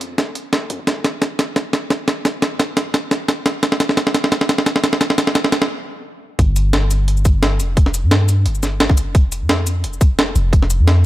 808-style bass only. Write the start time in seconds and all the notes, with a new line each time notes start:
Already playing: F2
0.70 F2
0.79 G1
0.87 G1
2.08 F1
2.51 G2
2.94 G1
5.28 F2
6.39 G1
7.60 F1
8.04 G2
8.46 G1
9.07 F1
9.42 F2
9.84 F1
10.36 F1
10.79 F2